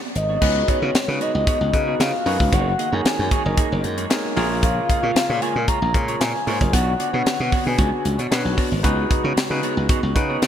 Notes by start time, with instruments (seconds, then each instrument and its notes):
0.03 muted clean electric guitar stroke
0.15 slap bass G#1, soft synth lead D#5, muted clean electric guitar stroke, closed hi-hat
0.29 clean electric guitar B3 D4 F#4 C#5
0.41 slap bass C#2, analog synth pad C#3 G#3 B3 F#4, clean electric guitar B3 F#4 G#4 C#5, tine electric piano D#4 F#4 G#4 B4, kick, crash
0.68 clean electric guitar B3 F#4 G#4 D#5, soft synth lead C#5, kick, closed hi-hat
0.82 slap bass C#3, clean electric guitar B3 F#4 G#4 C#5
0.94 muted slap bass stroke, snare, closed hi-hat
1.08 slap bass C#3, tine electric piano D#4 F#4 G#4 B4, muted clean electric guitar stroke
1.20 clean electric guitar B3 F#4 G#4 C#5, soft synth lead D#5, closed hi-hat
1.34 slap bass C#2, muted clean electric guitar stroke
1.47 clean electric guitar B3 F#4 G#4 C#5, kick, closed hi-hat
1.61 slap bass C#2, muted clean electric guitar stroke
1.73 slap bass C#3, tine electric piano D#4 F#4 G#4 B4, muted clean electric guitar stroke, kick, closed hi-hat
1.87 clean electric guitar B3 F#4 G#4 C#5
2.00 slap bass C#3, soft synth lead F5, snare, closed hi-hat
2.13 muted clean electric guitar stroke
2.26 slap bass F#2, clean electric guitar B3 F#4 G#4 C#5, tine electric piano D#4 F#4 G#4 B4, open hi-hat
2.40 slap bass C#2, muted clean electric guitar stroke, kick
2.52 slap bass F#1, analog synth pad D#3 G#3 A#3, clean electric guitar A#3 D#4 G#4 C#5, soft synth lead F#5, kick, closed hi-hat
2.78 clean electric guitar A#3 D#4 G#4 D#5, closed hi-hat
2.92 slap bass F#2, clean electric guitar A#3 D#4 G#4 C#5, tine electric piano D#4 G#4 A#4 C#5, soft synth lead G#5
3.05 muted slap bass stroke, snare, closed hi-hat
3.19 slap bass F#2, muted clean electric guitar stroke
3.31 clean electric guitar A#3 D#4 G#4 C#5, kick, closed hi-hat
3.45 slap bass F#1, tine electric piano D#4 G#4 A#4 D#5, muted clean electric guitar stroke
3.57 clean electric guitar A#3 D#4 G#4 C#5, kick, closed hi-hat
3.71 slap bass F#1, muted clean electric guitar stroke
3.84 slap bass F#2, muted clean electric guitar stroke, closed hi-hat
3.97 clean electric guitar A#3 D#4 G#4 C#5, closed hi-hat
4.10 tine electric piano D#4 G#4 A#4 C#5, snare, closed hi-hat
4.24 muted clean electric guitar stroke
4.36 slap bass A#1, analog synth pad C#3 F4, clean electric guitar A#3 F4 G#4 C#5, tine electric piano F4 G#4 A#4 C#5, open hi-hat
4.50 muted clean electric guitar stroke
4.63 clean electric guitar A#3 F4 G#4 C#5, soft synth lead F5, kick, closed hi-hat
4.89 clean electric guitar A#3 F4 G#4 D#5, kick, closed hi-hat
5.03 slap bass A#2, clean electric guitar A#3 F4 G#4 C#5
5.15 muted slap bass stroke, snare, closed hi-hat
5.29 slap bass A#2, tine electric piano F4 G#4 A#4 C#5, muted clean electric guitar stroke
5.41 clean electric guitar A#3 F4 G#4 C#5, soft synth lead G#5, closed hi-hat
5.56 slap bass A#2, muted clean electric guitar stroke
5.68 clean electric guitar A#3 F4 G#4 C#5, soft synth lead A#5, kick, closed hi-hat
5.82 slap bass A#1, muted clean electric guitar stroke
5.94 slap bass A#2, tine electric piano F4 G#4 A#4 C#5, muted clean electric guitar stroke, kick, closed hi-hat
6.08 clean electric guitar A#3 F4 G#4 C#5, closed hi-hat
6.20 slap bass A#2, soft synth lead G#5, snare, closed hi-hat
6.34 muted clean electric guitar stroke
6.47 slap bass G#2, clean electric guitar A#3 F4 G#4 C#5, tine electric piano F4 G#4 A#4 C#5, open hi-hat
6.61 slap bass F#1, muted clean electric guitar stroke, kick, closed hi-hat
6.73 slap bass B1, analog synth pad D3 B3 F#4 C#5, clean electric guitar B3 D4 F#4 C#5, soft synth lead F#5, kick, closed hi-hat
6.99 clean electric guitar B3 D4 F#4 D5, closed hi-hat
7.13 slap bass B2, clean electric guitar B3 D4 F#4 C#5, tine electric piano D4 F#4 B4 C#5
7.26 soft synth lead F#5, muted slap bass stroke, snare, closed hi-hat
7.40 slap bass B2, muted clean electric guitar stroke
7.52 clean electric guitar B3 D4 F#4 C#5, kick, open hi-hat
7.66 slap bass B2, tine electric piano D4 F#4 B4 C#5, soft synth lead G#5, muted clean electric guitar stroke
7.78 slap bass C#2, clean electric guitar B3 D4 F#4 C#5, kick, closed hi-hat
7.92 muted clean electric guitar stroke
8.05 slap bass C#2, muted clean electric guitar stroke, closed hi-hat
8.18 slap bass B2, clean electric guitar B3 D4 F#4 C#5, closed hi-hat
8.31 slap bass B2, tine electric piano D4 F#4 B4 C#5, snare, closed hi-hat
8.45 slap bass B1, muted clean electric guitar stroke
8.57 clean electric guitar B3 D4 F#4 C#5, kick, open hi-hat
8.71 slap bass G#1, muted clean electric guitar stroke
8.83 slap bass C#2, analog synth pad C#3 G#3, clean electric guitar B3 F#4 G#4 C#5, tine electric piano D#4 F#4 G#4 B4, kick, closed hi-hat
9.10 clean electric guitar B3 F#4 G#4 D#5, kick, closed hi-hat
9.24 slap bass C#3, clean electric guitar B3 F#4 G#4 C#5
9.37 muted slap bass stroke, snare, closed hi-hat
9.50 slap bass C#3, tine electric piano D#4 F#4 G#4 B4, muted clean electric guitar stroke
9.62 clean electric guitar B3 F#4 G#4 C#5, closed hi-hat
9.77 slap bass C#2, muted clean electric guitar stroke
9.89 clean electric guitar B3 F#4 G#4 C#5, kick, closed hi-hat
10.03 slap bass C#2, muted clean electric guitar stroke
10.15 slap bass C#3, tine electric piano D#4 F#4 G#4 B4, muted clean electric guitar stroke, kick, closed hi-hat
10.29 clean electric guitar B3 F#4 G#4 C#5
10.42 slap bass C#3, snare, closed hi-hat